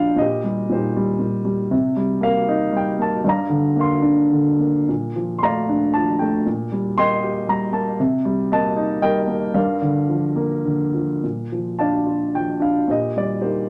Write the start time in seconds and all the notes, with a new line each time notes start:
Already playing: A#2 F3 D4 F4 D5 F5 G5 A5
0.16 A#2 D#5
0.21 G4 C5
0.44 G3
0.69 A#2 C5
0.74 D#4 G4
0.97 G3
1.19 A#2
1.45 G3
1.71 C3
1.96 G3
2.21 A#3 A#4 F5
2.48 D#4
2.72 G3
2.77 G5
2.99 A#3 A5
3.24 G2 D5 F5
3.29 A#5
3.49 D3
3.76 A#3 F5
3.81 C6
4.02 D4
4.32 D3
4.59 A#3
4.89 A#2
5.16 F3
5.39 C6
5.43 A3 D5 F5 A#5
5.69 D4
5.94 F3 A5
6.19 A3 G5
6.46 A#2
6.72 G3
6.98 A#3 D#5 G5 C6
7.23 G4
7.48 G3 A#5
7.72 A#3 A5
8.00 C3
8.25 G3
8.52 A#3 D#5 A5
8.76 D#4
9.02 G3 A#4 D#5 G5
9.27 A#3
9.54 G2 A#4 D5 F5
9.82 D3
10.09 F3
10.36 A#3
10.65 D3
10.94 F3
11.23 A#2
11.52 F3
11.79 D4 D5 F5 A5
12.06 F4
12.35 F3 G5
12.60 D4 F5
12.88 A#2 G4 C5 D#5
13.16 G3 D5
13.41 A#3 D#4 G4 C5